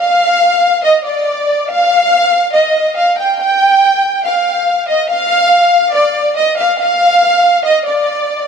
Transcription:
violin section
0.00 F5
0.84 D#5
1.05 D5
1.69 F5
2.54 D#5
2.96 F5
3.18 G5
3.39 G5
4.24 F5
4.88 D#5
5.09 F5
5.94 D5
6.37 D#5
6.58 F5
6.79 F5
7.65 D#5
7.86 D5

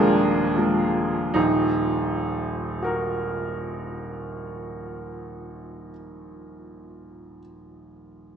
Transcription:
upright piano
Already playing: D#1 D#2 F3 G#3 A#3 D4 F4 G#4 A#4 D5
0.57 F3 G#3 A#3
1.34 D#1 A#1 D#4
2.82 F#4 A#4

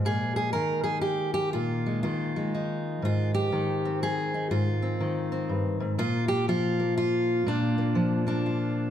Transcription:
steel-string acoustic guitar
Already playing: F3 G#3
0.05 A#2 G#4
0.36 G#4
0.53 D#3 A#4
0.84 G#4
1.01 G4
1.34 G4
1.53 A#2 F4
1.86 G#3
2.03 D#3 F4
2.36 G#3
2.55 D#4
3.02 G#2 F4
3.34 G4
3.52 D#3
3.85 C4
4.03 G#4
4.34 D#4
4.51 G#2 F4
4.82 C4
5.00 D#3
5.32 C4
5.49 G2
5.80 G#2
5.98 A#2 F4
6.28 G4
6.48 F3 F4
6.80 A#3
6.97 F4
7.46 A#2 D4
7.78 A#3
7.95 F3
8.27 A#3 D4
8.46 F4

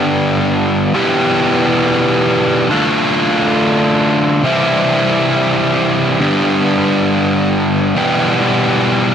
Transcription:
overdriven electric guitar
Already playing: G2 D3 G3 B3 D4 G4
0.94 E2 B2 E3 G3 B3 G4
2.69 D3 A3 D4 F4
4.44 C3 E3 G3 C4 E4
6.20 G2 D3 G3 B3 D4 G4
7.95 E2 B2 E3 G3 B3 G4

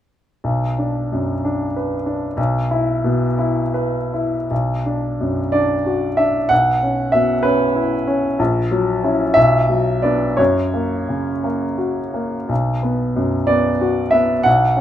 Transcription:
grand piano
0.44 B1
0.78 D4
1.12 F#2
1.45 D4
1.76 B4
2.06 D4
2.37 B1
2.71 E4
3.04 B2
3.39 E4
3.74 B4
4.14 E4
4.51 B1
4.86 D4
5.20 F#2
5.52 D4 D5
5.86 F#4
6.17 D4 E5
6.49 B1 F#5
6.83 C#4
7.12 B2 E5
7.43 C#4 B4
7.75 E4
8.07 C#4
8.39 A#1
8.71 F#3
9.03 C#4 E4
9.34 B1 E5
9.70 F#3
10.02 B3 D4 D5
10.37 F#2 C#5
10.74 A#3
11.09 C#3
11.44 A#3
11.78 F#4
12.14 A#3
12.49 B1
12.83 B3
13.16 F#2
13.47 B3 D5
13.81 F#4
14.11 B3 E5
14.43 B1 F#5
14.77 C#4

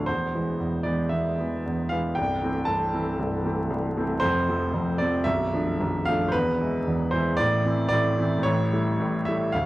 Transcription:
grand piano
0.06 E1 E2 C5
0.34 E3 G#3 B3
0.59 E1 E2
0.83 E3 G#3 B3 D5
1.09 E1 E2 E5
1.39 E3 G#3 B3
1.66 E1 E2
1.89 E3 G#3 B3 F5
2.15 C1 C2 G5
2.43 E3 A3 C4
2.65 C1 C2 A5
2.94 E3 A3 C4
3.19 C1 C2
3.46 E3 A3 C4
3.70 C1 C2
3.97 E3 A3 C4
4.20 F1 F2 C5
4.48 F3 A3 C4
4.74 F1 F2
4.98 F3 A3 C4 D5
5.24 B0 B1 E5
5.53 F3 A3 D4
5.80 B0 B1
6.06 F3 A3 D4 F5
6.28 B4 C5
6.34 E1 E2
6.60 E3 G#3 E4
6.87 E1 E2
7.11 E3 G#3 E4 C5
7.37 A1 A2 D5
7.65 E3 C4 E4
7.89 A1 A2 D5
8.18 E3 C4 E4
8.38 A2
8.43 A1 C#5
8.73 G3 A3 E4
9.00 A1 A2
9.25 G3 A3 E4 E5
9.52 D1 D2 F5

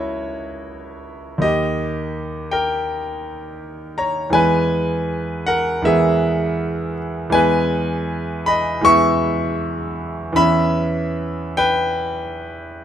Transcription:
grand piano
Already playing: C#2 A#3 E4 F#4 A#4 C#5 D#5 E5
1.38 D#2 A#3 D#4 D#5
1.43 G4
2.51 A#4 G5
3.98 C#5 A#5
4.30 E2 E3 G#3 B3 G#5
4.34 B4
5.46 A#4 F#5
5.82 E2 E3 G#3 B3 E5
5.87 G#4
7.30 E2 E3 G#3 B3 G#5
7.34 B4
8.46 D#5 B5
8.81 E2 E3 G#3 B3 C#6
8.86 E5
10.32 E2 E3 B3 C#4 B5
10.37 E5
11.57 B4 G5

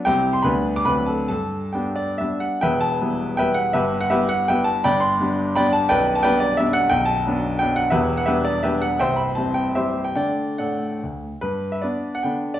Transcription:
grand piano
0.05 C2 G3 C4 E4 G4 G5
0.33 C6
0.42 D2 G3 B3 D4 B4 B5
0.76 D6
0.85 D2 F#3 C4 D4 B4 B5
1.06 A4 A5
1.28 G2 A4 A5
1.73 B3 D4 G4 G5
1.96 D5
2.18 G3 B3 D4 E5
2.40 F#5
2.61 E1 E2 B4 E5 G5
2.81 A5
3.01 G3 B3 E4
3.37 G3 B3 E4 B4 E5 G5
3.54 F#5
3.73 G1 G2 G4 B4 E5
4.01 F#5
4.10 G3 B3 E4 G4 B4 E5
4.29 F#5
4.48 G3 B3 E4 B4 E5 G5
4.64 A5
4.84 G1 G2 D5 G5 B5
5.00 C6
5.20 G3 B3 D4
5.56 G3 B3 D4 D5 G5 B5
5.73 A5
5.89 B0 B1 B4 D5 G5
6.15 A5
6.23 G3 B3 D4 B4 D5 G5
6.40 D5
6.57 G3 B3 D4 E5
6.73 F#5
6.90 B0 B1 G5
7.05 A5
7.26 F#3 B3 D4
7.59 F#3 B3 D4 G5
7.76 F#5
7.90 E1 E2 G4 B4 E5
8.17 F#5
8.26 G3 B3 D4 G4 B4 E5
8.45 D5
8.63 G3 B3 D4 G4 B4 E5
8.82 F#5
8.99 C1 C2 C5 E5 G5
9.16 B5
9.35 G3 C4 E4 A5
9.54 G5
9.75 G3 C4 E4 G4 C5 E5
10.04 G5
10.16 D3 A3 D4 D5 G5
10.58 A2 A4 D5 F#5
11.03 D2
11.41 G2 B4
11.72 E5
11.82 B3 D4 D5
12.15 F#5
12.23 D3 B3 D4 G5
12.54 D5

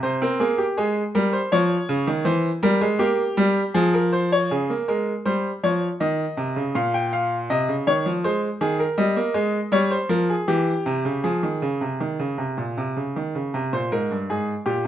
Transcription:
grand piano
0.03 C3 C5
0.22 C4 A#4
0.40 A#3 G#4
0.58 G4
0.77 G#3 G#4
1.15 G3 A#4
1.33 C5
1.52 F3 C#5
1.89 C#3
2.07 D#3
2.25 E3 C5
2.63 G3 A#4
2.81 G#3
2.99 A#3 G4
3.37 G3
3.74 F3 G#4
3.94 A#4
4.13 C5
4.32 C#5
4.51 C#3 G#4
4.70 A#3
4.88 G#3 A#4
5.25 G3 C5
5.63 F3 C#5
6.00 D#3 D#5
6.37 C3
6.56 C#3
6.75 A#2 F5
6.94 G5
7.13 F5
7.50 C3 D#5
7.69 C#3
7.87 D#3 C#5
8.06 F3
8.24 G#3 C5
8.61 D#3 G#4
8.80 A#4
8.98 G3 D#5
9.16 A#3
9.34 G#3
9.72 G3 C#5
9.91 C5
10.09 F3 A#4
10.30 G#4
10.48 E3 G4
10.86 C3
11.05 C#3
11.24 F3 G#4
11.43 D#3
11.62 C#3
11.81 C3
12.00 D#3
12.19 C#3
12.38 C3
12.58 A#2
12.77 C3
12.97 C#3
13.16 D#3
13.35 C#3
13.54 C3
13.73 A#2 C5
13.92 G#2 A#4
14.11 G2
14.30 G#2 G#4
14.66 A#2 G4

